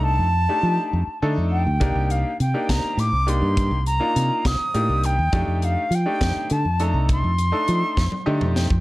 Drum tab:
HH |------------|x-x-x-x-x-x-|x-x-x-x-x-x-|x-x-x-x-x-x-|
SD |------------|------o-----|------o-----|------o-----|
T1 |------------|------------|------------|------------|
T2 |------------|------------|------------|------------|
BD |------------|o-----o-----|o-----o-----|o-----o-----|

HH |x-x-x-------|
SD |------o---o-|
T1 |-------o----|
T2 |---------o--|
BD |o-----o----o|